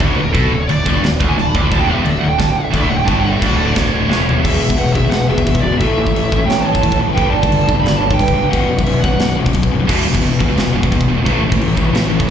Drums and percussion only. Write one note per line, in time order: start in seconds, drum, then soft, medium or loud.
0.00 kick loud
0.00 crash medium
0.35 kick loud
0.35 crash medium
0.69 crash medium
0.86 kick loud
1.04 snare loud
1.04 crash medium
1.21 kick loud
1.39 crash medium
1.55 kick loud
1.72 kick loud
1.72 crash medium
2.06 crash medium
2.39 kick loud
2.39 snare loud
2.39 crash medium
2.74 kick loud
2.74 crash medium
3.08 kick loud
3.08 crash medium
3.42 kick loud
3.42 crash medium
3.76 kick loud
3.76 snare loud
3.76 crash medium
4.12 snare medium
4.29 floor tom medium
4.45 kick loud
4.45 crash loud
4.45 china medium
4.70 kick loud
4.78 china medium
4.95 kick medium
5.11 snare medium
5.11 china medium
5.38 kick medium
5.47 kick loud
5.47 china medium
5.55 kick loud
5.80 kick loud
5.80 china medium
6.07 kick medium
6.16 china medium
6.32 kick loud
6.50 snare loud
6.50 china medium
6.75 kick medium
6.83 kick medium
6.83 china medium
6.92 kick medium
7.18 kick loud
7.18 china medium
7.43 kick loud
7.52 china medium
7.69 kick loud
7.86 snare loud
7.86 china medium
8.11 kick medium
8.19 kick loud
8.19 china medium
8.28 kick medium
8.53 kick loud
8.53 china medium
8.79 kick loud
8.86 china medium
9.04 kick medium
9.19 snare loud
9.19 china medium
9.46 kick medium
9.53 kick medium
9.53 china medium
9.63 kick medium
9.89 kick loud
9.89 crash loud
9.89 china medium
10.15 kick loud
10.21 china medium
10.40 kick medium
10.57 snare loud
10.57 china medium
10.83 kick loud
10.92 kick loud
10.92 china medium
11.01 kick loud
11.26 kick loud
11.26 china medium
11.52 kick loud
11.61 china medium
11.77 kick medium
11.95 snare medium
11.95 china medium
12.20 kick loud